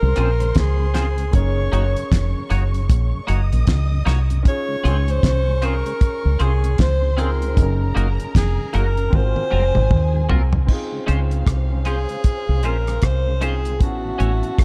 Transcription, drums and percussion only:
0.16 closed hi-hat medium
0.40 closed hi-hat medium
0.55 kick loud
0.55 snare loud
0.55 closed hi-hat medium
0.94 snare medium
0.94 closed hi-hat medium
1.18 closed hi-hat medium
1.33 kick loud
1.33 closed hi-hat medium
1.73 closed hi-hat medium
1.96 closed hi-hat medium
2.12 kick loud
2.12 snare loud
2.12 closed hi-hat loud
2.50 closed hi-hat medium
2.74 closed hi-hat soft
2.90 kick loud
2.90 closed hi-hat medium
3.28 closed hi-hat medium
3.52 closed hi-hat medium
3.67 kick loud
3.67 snare loud
3.67 closed hi-hat medium
4.07 snare medium
4.07 closed hi-hat medium
4.30 closed hi-hat medium
4.45 kick loud
4.45 closed hi-hat medium
4.85 closed hi-hat medium
5.08 closed hi-hat medium
5.23 kick loud
5.23 snare loud
5.23 closed hi-hat loud
5.62 closed hi-hat medium
5.86 closed hi-hat soft
6.01 kick loud
6.01 closed hi-hat medium
6.40 closed hi-hat medium
6.64 closed hi-hat medium
6.78 kick loud
6.78 snare loud
6.78 closed hi-hat medium
7.18 closed hi-hat medium
7.42 closed hi-hat medium
7.57 kick loud
7.57 closed hi-hat medium
7.97 closed hi-hat medium
8.20 closed hi-hat medium
8.35 kick loud
8.35 snare loud
8.35 closed hi-hat loud
8.74 closed hi-hat medium
8.97 closed hi-hat soft
9.13 kick loud
9.13 high tom medium
9.36 high tom medium
9.75 mid tom medium
9.91 kick loud
9.91 mid tom medium
10.29 floor tom loud
10.53 floor tom medium
10.68 kick loud
10.68 crash medium
11.08 closed hi-hat medium
11.31 closed hi-hat soft
11.47 kick loud
11.47 cross-stick loud
11.47 closed hi-hat loud
11.85 closed hi-hat medium
12.09 closed hi-hat soft
12.24 kick loud
12.24 closed hi-hat medium
12.63 closed hi-hat medium
12.87 cross-stick medium
12.87 closed hi-hat medium
13.02 kick loud
13.02 cross-stick loud
13.02 closed hi-hat medium
13.42 closed hi-hat medium
13.65 closed hi-hat medium
13.80 kick loud
13.80 closed hi-hat medium
14.20 closed hi-hat medium
14.43 closed hi-hat soft
14.59 kick loud
14.59 cross-stick loud
14.59 closed hi-hat loud

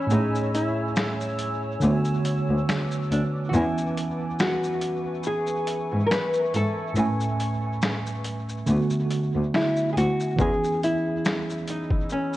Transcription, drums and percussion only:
0.10 shaker medium
0.35 shaker soft
0.55 closed hi-hat medium
0.55 shaker soft
0.96 finger snap medium
0.96 snare loud
0.96 shaker medium
1.21 shaker soft
1.39 closed hi-hat medium
1.39 shaker soft
1.81 shaker medium
2.05 shaker soft
2.25 closed hi-hat medium
2.25 shaker medium
2.69 finger snap medium
2.69 snare loud
2.69 shaker medium
2.91 shaker soft
3.12 closed hi-hat medium
3.12 shaker soft
3.53 shaker medium
3.78 shaker soft
3.97 closed hi-hat medium
3.97 shaker soft
4.39 finger snap medium
4.39 snare loud
4.39 shaker medium
4.64 shaker soft
4.81 closed hi-hat medium
4.81 shaker soft
5.23 shaker medium
5.47 shaker soft
5.67 closed hi-hat medium
5.67 shaker medium
6.11 finger snap medium
6.11 snare loud
6.11 shaker medium
6.33 shaker soft
6.54 closed hi-hat medium
6.54 shaker soft
6.96 shaker medium
7.20 shaker soft
7.40 closed hi-hat medium
7.40 shaker soft
7.82 finger snap medium
7.82 snare loud
7.82 shaker medium
8.06 shaker soft
8.24 closed hi-hat medium
8.24 shaker soft
8.49 shaker soft
8.67 shaker medium
8.90 shaker soft
9.11 closed hi-hat medium
9.11 shaker soft
9.54 finger snap medium
9.54 snare loud
9.54 shaker medium
9.77 shaker soft
9.97 closed hi-hat medium
9.97 shaker soft
10.20 shaker soft
10.39 kick loud
10.39 shaker medium
10.64 shaker soft
10.83 closed hi-hat medium
10.83 shaker soft
11.25 finger snap medium
11.25 snare loud
11.25 shaker medium
11.50 shaker soft
11.68 closed hi-hat medium
11.68 shaker soft
11.91 kick medium
12.10 shaker medium
12.33 shaker soft

